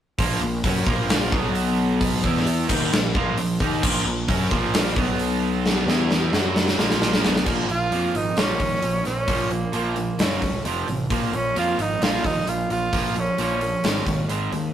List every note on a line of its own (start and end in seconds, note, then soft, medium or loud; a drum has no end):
0.19 0.40 A#1 loud
0.19 0.40 A#2 medium
0.19 0.41 F3 medium
0.19 0.42 A#3 loud
0.19 kick loud
0.19 open hi-hat medium
0.42 0.63 A#1 medium
0.42 0.60 A#2 medium
0.42 0.60 F3 medium
0.64 0.86 F#2 loud
0.64 0.86 F#3 medium
0.64 0.87 C#4 medium
0.64 0.87 F#4 loud
0.64 kick loud
0.64 open hi-hat medium
0.86 1.29 A#1 loud
0.86 1.32 A#2 medium
0.86 1.32 F3 loud
0.86 1.32 A#3 loud
0.86 kick loud
1.09 snare loud
1.09 open hi-hat medium
1.32 2.20 B1 medium
1.32 2.23 B2 medium
1.32 2.24 F#3 medium
1.32 2.23 B3 loud
1.32 kick loud
1.55 open hi-hat medium
2.01 kick loud
2.01 open hi-hat medium
2.24 2.66 E2 loud
2.24 2.69 E3 medium
2.24 2.69 B3 medium
2.24 2.69 E4 medium
2.24 kick loud
2.37 snare soft
2.47 open hi-hat medium
2.69 2.90 D#2 loud
2.69 2.92 D#3 medium
2.69 2.92 A#3 medium
2.69 2.92 D#4 medium
2.69 kick loud
2.69 crash loud
2.92 3.13 A#1 medium
2.92 3.11 A#2 medium
2.92 3.11 F3 medium
2.92 snare loud
3.15 3.36 A#1 medium
3.15 3.37 A#2 medium
3.15 3.38 F3 loud
3.15 3.38 A#3 loud
3.15 kick loud
3.37 3.59 A#1 medium
3.37 3.57 A#2 medium
3.37 3.57 F3 medium
3.37 open hi-hat medium
3.60 3.81 D#2 loud
3.60 3.83 D#3 loud
3.60 3.83 A#3 medium
3.60 3.83 D#4 loud
3.60 kick medium
3.83 4.04 A#1 loud
3.83 4.06 A#2 loud
3.83 4.06 F3 loud
3.83 4.06 A#3 loud
3.83 kick loud
3.83 crash loud
4.05 4.27 A#1 medium
4.05 4.24 A#2 medium
4.05 4.25 F3 medium
4.29 4.50 F#2 loud
4.29 4.51 F#3 medium
4.29 4.51 C#4 medium
4.29 4.51 F#4 loud
4.29 kick loud
4.29 open hi-hat medium
4.51 4.94 A#1 loud
4.51 4.96 A#2 medium
4.51 4.97 F3 medium
4.51 4.98 A#3 medium
4.51 kick loud
4.74 snare loud
4.74 open hi-hat medium
4.96 5.83 B1 medium
4.96 5.87 B2 medium
4.96 5.87 F#3 medium
4.96 5.87 B3 medium
4.96 kick loud
5.19 open hi-hat medium
5.66 snare medium
5.87 6.29 E2 loud
5.87 6.32 E3 medium
5.87 6.32 B3 medium
5.87 6.33 E4 medium
5.87 snare medium
6.11 snare medium
6.32 6.75 F#2 loud
6.32 6.77 F#3 medium
6.32 6.78 C#4 medium
6.32 6.78 F#4 loud
6.32 snare medium
6.56 snare medium
6.68 snare medium
6.78 7.21 A#1 medium
6.78 7.23 A#2 medium
6.78 7.23 F3 medium
6.78 7.23 A#3 medium
6.78 snare medium
6.91 snare medium
7.02 snare medium
7.13 snare medium
7.24 7.45 B1 loud
7.24 7.45 B2 medium
7.24 7.46 F#3 loud
7.24 7.46 B3 medium
7.24 snare loud
7.36 snare medium
7.46 7.63 A#1 medium
7.46 7.67 A#2 medium
7.46 7.67 F3 medium
7.46 7.68 A#3 medium
7.46 kick loud
7.46 crash medium
7.68 7.86 A#1 medium
7.68 7.89 A#2 medium
7.68 7.89 F3 medium
7.68 8.18 F4 loud
7.68 open hi-hat soft
7.91 8.08 F2 medium
7.91 8.13 A#2 medium
7.91 8.13 F3 medium
7.91 8.14 A#3 medium
7.91 open hi-hat medium
8.14 8.31 G#1 medium
8.14 8.35 A#2 medium
8.14 8.35 F3 medium
8.14 8.40 D#4 medium
8.14 open hi-hat medium
8.36 8.54 A#1 medium
8.36 8.58 A#2 medium
8.36 8.59 F3 medium
8.36 8.59 A#3 medium
8.36 9.06 C#4 loud
8.36 snare loud
8.36 open hi-hat medium
8.60 8.77 D#2 medium
8.60 8.81 A#2 medium
8.60 8.81 F3 medium
8.60 kick medium
8.60 open hi-hat medium
8.82 9.00 A#1 medium
8.82 9.03 A#2 medium
8.82 9.03 F3 medium
8.82 open hi-hat medium
9.05 9.23 A#1 medium
9.05 9.26 A#2 medium
9.05 9.26 F3 medium
9.05 9.54 C#4 loud
9.05 snare soft
9.05 open hi-hat soft
9.28 9.62 A#1 medium
9.28 9.50 A#2 medium
9.28 9.50 F3 medium
9.28 9.50 A#3 medium
9.28 kick loud
9.28 open hi-hat medium
9.51 9.71 A#2 medium
9.51 9.71 F3 medium
9.51 9.74 A#3 medium
9.51 open hi-hat soft
9.72 10.08 A#1 medium
9.72 9.94 A#2 medium
9.72 9.95 F3 medium
9.72 9.95 A#3 medium
9.72 10.22 A#3 medium
9.72 open hi-hat medium
9.96 10.17 A#2 medium
9.96 10.17 F3 medium
9.96 open hi-hat medium
10.18 10.37 F#1 medium
10.18 10.40 F#2 medium
10.18 10.41 C#3 medium
10.18 10.41 F#3 medium
10.18 10.66 C#4 medium
10.18 snare loud
10.18 open hi-hat medium
10.42 10.59 C#2 medium
10.42 10.63 F#2 medium
10.42 10.63 C#3 medium
10.42 kick medium
10.42 open hi-hat soft
10.65 10.82 F1 medium
10.65 10.86 F2 loud
10.65 10.86 C3 loud
10.65 10.87 F3 loud
10.65 open hi-hat medium
10.87 11.05 A1 medium
10.87 11.08 F2 medium
10.87 11.08 C3 medium
10.87 open hi-hat soft
11.10 11.28 A#1 medium
11.10 11.32 A#2 medium
11.10 11.32 F3 medium
11.10 11.32 A#3 medium
11.10 11.36 A#3 medium
11.10 kick loud
11.10 open hi-hat medium
11.33 11.50 A#1 medium
11.33 11.54 A#2 medium
11.33 11.54 F3 medium
11.33 11.57 C#4 loud
11.33 open hi-hat soft
11.55 11.73 F2 medium
11.55 11.77 A#2 medium
11.55 11.77 F3 medium
11.55 11.78 A#3 loud
11.55 11.82 F4 loud
11.55 open hi-hat medium
11.78 11.95 G#1 medium
11.78 11.99 A#2 medium
11.78 11.99 F3 medium
11.78 12.04 D#4 loud
11.78 open hi-hat medium
12.01 12.18 A#1 medium
12.01 12.23 A#2 medium
12.01 12.23 F3 medium
12.01 12.23 A#3 loud
12.01 12.27 F4 loud
12.01 snare loud
12.01 open hi-hat medium
12.24 12.42 D#2 medium
12.24 12.45 A#2 medium
12.24 12.45 F3 medium
12.24 12.50 D#4 loud
12.24 kick medium
12.24 open hi-hat medium
12.46 12.64 A#1 medium
12.46 12.68 A#2 medium
12.46 12.69 F3 medium
12.46 12.71 F4 loud
12.46 open hi-hat medium
12.70 12.87 A#1 medium
12.70 12.91 A#2 medium
12.70 12.91 F3 medium
12.70 13.21 F4 loud
12.70 open hi-hat medium
12.93 13.27 A#1 medium
12.93 13.15 A#2 medium
12.93 13.15 F3 medium
12.93 13.15 A#3 loud
12.93 kick loud
12.93 open hi-hat medium
13.16 13.36 A#2 medium
13.16 13.36 F3 medium
13.16 13.40 C#4 medium
13.16 open hi-hat medium
13.38 13.73 A#1 medium
13.38 13.59 A#2 medium
13.38 13.60 F3 medium
13.38 13.60 A#3 medium
13.38 open hi-hat medium
13.43 14.28 C#4 medium
13.61 13.81 A#2 medium
13.61 13.82 F3 medium
13.61 open hi-hat medium
13.84 14.01 G#1 medium
13.84 14.05 G#2 medium
13.84 14.05 D#3 medium
13.84 14.06 G#3 medium
13.84 snare loud
13.84 open hi-hat medium
14.06 14.24 D#2 medium
14.06 14.27 G#2 medium
14.06 14.27 D#3 medium
14.06 kick medium
14.06 open hi-hat medium
14.29 14.47 G#1 medium
14.29 14.51 G#2 medium
14.29 14.51 D#3 medium
14.29 14.52 G#3 loud
14.29 open hi-hat medium
14.52 14.69 D#2 medium
14.52 14.73 G#2 medium
14.52 14.73 D#3 medium
14.52 open hi-hat soft